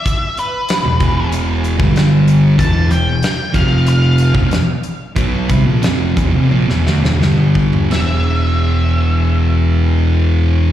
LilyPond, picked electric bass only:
\new Staff \with { instrumentName = "Picked electric bass" } { \clef bass \time 4/4 \key e \phrygian \tempo 4 = 91 r4 r16 e,,16 e,,4~ e,,16 g,,4~ g,,16 | e,,8 e,,8 r8 f,,4~ f,,16 e,,16 r4 | b,,8 c,16 ais,,16 f,,8 e,,16 f,,16 ais,,16 e,,16 d,16 e,,16 g,,4 | e,,1 | }